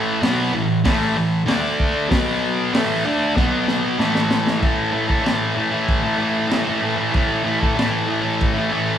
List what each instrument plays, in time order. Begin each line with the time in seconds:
Already playing: distorted electric guitar A2 E3 A3
0.22 distorted electric guitar B2 F#3 B3, snare, open hi-hat
0.54 distorted electric guitar A2 E3
0.84 distorted electric guitar A2 E3 A3, kick, snare, open hi-hat
1.16 distorted electric guitar A2 E3
1.46 distorted electric guitar D3 A3 D4, snare, open hi-hat
1.80 kick
2.09 distorted electric guitar B2 F#3 B3, kick, snare, open hi-hat
2.73 distorted electric guitar A2 E3 A3, snare, open hi-hat
3.05 distorted electric guitar D3 A3 D4
3.36 distorted electric guitar B2 F#3 B3, kick, snare
3.68 snare
3.99 distorted electric guitar A2 E3 A3, snare
4.15 snare
4.31 snare
4.47 snare
4.61 distorted electric guitar A2 E3 A3, kick, crash
4.92 distorted electric guitar A2 E3 A3
5.08 distorted electric guitar E3 A3, kick
5.22 distorted electric guitar A2 E3 A3
5.26 snare, crash
5.55 distorted electric guitar A2 E3 A3
5.71 distorted electric guitar E3 A3
5.88 kick, crash
6.03 distorted electric guitar E3 A3
6.18 distorted electric guitar A2 E3 A3
6.48 distorted electric guitar A2 E3 A3, snare, crash
6.65 distorted electric guitar A3
6.69 distorted electric guitar E3
6.81 distorted electric guitar A2 E3 A3
6.97 distorted electric guitar E3 A3
7.12 distorted electric guitar A2 E3 A3, kick, crash
7.43 distorted electric guitar A2 E3 A3
7.61 distorted electric guitar E3 A3, kick
7.76 distorted electric guitar A2 E3 A3, snare, crash
8.07 distorted electric guitar A2 E3 A3
8.22 distorted electric guitar E3 A3
8.41 kick, crash
8.55 distorted electric guitar E3 A3
8.70 distorted electric guitar A2 E3 A3